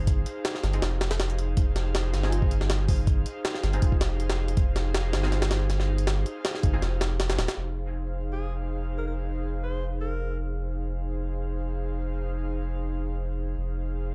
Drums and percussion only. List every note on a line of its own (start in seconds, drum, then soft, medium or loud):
0.07 kick loud
0.07 closed hi-hat medium
0.26 closed hi-hat medium
0.45 snare loud
0.45 closed hi-hat medium
0.55 snare soft
0.64 snare medium
0.64 closed hi-hat medium
0.73 closed hi-hat soft
0.82 snare loud
0.82 closed hi-hat medium
1.01 snare loud
1.01 closed hi-hat medium
1.11 snare loud
1.11 closed hi-hat medium
1.20 snare loud
1.20 closed hi-hat medium
1.30 closed hi-hat medium
1.39 closed hi-hat medium
1.57 kick loud
1.57 closed hi-hat medium
1.76 snare medium
1.76 closed hi-hat medium
1.95 snare loud
1.95 closed hi-hat medium
2.14 snare soft
2.14 closed hi-hat medium
2.23 snare soft
2.32 closed hi-hat medium
2.42 kick loud
2.51 closed hi-hat medium
2.61 snare medium
2.70 snare loud
2.70 closed hi-hat medium
2.88 kick loud
2.88 open hi-hat medium
3.07 kick loud
3.07 closed hi-hat medium
3.26 closed hi-hat medium
3.45 snare loud
3.45 closed hi-hat medium
3.55 snare soft
3.64 snare soft
3.64 closed hi-hat medium
3.73 closed hi-hat soft
3.82 kick loud
3.82 closed hi-hat medium
3.92 kick medium
4.01 snare loud
4.01 closed hi-hat medium
4.20 closed hi-hat medium
4.30 snare loud
4.30 closed hi-hat medium
4.48 closed hi-hat medium
4.57 kick loud
4.57 closed hi-hat medium
4.76 snare medium
4.76 closed hi-hat medium
4.95 snare loud
4.95 closed hi-hat medium
5.13 snare loud
5.13 closed hi-hat medium
5.23 snare soft
5.32 snare soft
5.32 closed hi-hat medium
5.42 snare loud
5.42 closed hi-hat medium
5.51 snare loud
5.51 closed hi-hat medium
5.70 snare soft
5.70 closed hi-hat medium
5.80 snare soft
5.98 closed hi-hat medium
6.07 snare loud
6.07 closed hi-hat medium
6.26 closed hi-hat medium
6.45 snare loud
6.45 closed hi-hat medium
6.55 snare soft
6.63 kick medium
6.63 closed hi-hat medium
6.82 snare soft
6.82 closed hi-hat medium
7.01 snare loud
7.01 closed hi-hat medium
7.20 snare loud
7.20 closed hi-hat medium
7.30 snare loud
7.30 closed hi-hat medium
7.39 snare loud
7.39 closed hi-hat medium
7.48 snare loud
7.48 closed hi-hat medium